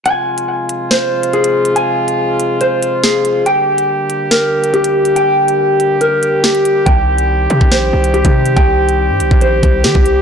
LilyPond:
<<
  \new Staff \with { instrumentName = "Clean electric guitar" } { \time 4/4 \key f \dorian \tempo 4 = 141 aes''2 c''4 aes'4 | aes''2 c''4 aes'4 | g''2 bes'4 g'4 | g''2 bes'4 g'4 |
g''2 c''4 g'4 | g''2 c''4 g'4 | }
  \new Staff \with { instrumentName = "Brass ensemble" } { \clef bass \time 4/4 \key f \dorian << { <f f'>1~ | <f f'>1 | <g g'>1~ | <g g'>1~ |
<g g'>1~ | <g g'>1 | } \\ { <c aes>1~ | <c aes>1 | <d bes>1~ | <d bes>1 |
<ees c'>1~ | <ees c'>1 | } >> }
  \new Staff \with { instrumentName = "808-style bass" } { \clef bass \time 4/4 \key f \dorian r1 | r1 | r1 | r1 |
c,4. c16 bes,,8. c,8. c8. | c,4~ c,16 g,16 c,16 bes,,8. c,8 ees16 c,8. | }
  \new DrumStaff \with { instrumentName = "Drums" } \drummode { \time 4/4 hh8. hh16 r8 hh8 sn8. hh16 hh16 hh8 hh16 | hh8. hh16 r8 hh8 hh8 hh8 <hh sn>8 hh8 | hh8. hh16 r8 hh8 sn8. hh16 hh16 hh8 hh16 | hh8. hh16 r8 hh8 hh8 hh8 <hh sn>16 hh16 hh8 |
<hh bd>8. hh16 r8 hh16 bd16 sn8. hh16 hh16 <hh bd>8 hh16 | <hh bd>8. hh16 r8 hh16 bd16 hh8 <hh bd>8 <hh sn>16 bd16 hh8 | }
>>